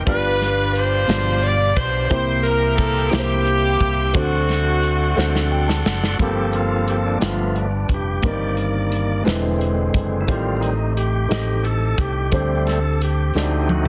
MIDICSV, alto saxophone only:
0, 0, Header, 1, 2, 480
1, 0, Start_track
1, 0, Key_signature, -2, "minor"
1, 0, Tempo, 681044
1, 42, Time_signature, 6, 3, 24, 8
1, 9783, End_track
2, 0, Start_track
2, 0, Title_t, "Alto saxophone"
2, 0, Program_c, 0, 65
2, 53, Note_on_c, 0, 71, 86
2, 500, Note_off_c, 0, 71, 0
2, 518, Note_on_c, 0, 72, 104
2, 1015, Note_on_c, 0, 74, 97
2, 1025, Note_off_c, 0, 72, 0
2, 1241, Note_off_c, 0, 74, 0
2, 1245, Note_on_c, 0, 72, 91
2, 1467, Note_off_c, 0, 72, 0
2, 1478, Note_on_c, 0, 72, 96
2, 1704, Note_off_c, 0, 72, 0
2, 1715, Note_on_c, 0, 70, 88
2, 1948, Note_on_c, 0, 69, 85
2, 1959, Note_off_c, 0, 70, 0
2, 2188, Note_on_c, 0, 67, 93
2, 2199, Note_off_c, 0, 69, 0
2, 2922, Note_on_c, 0, 66, 83
2, 2933, Note_off_c, 0, 67, 0
2, 4123, Note_off_c, 0, 66, 0
2, 9783, End_track
0, 0, End_of_file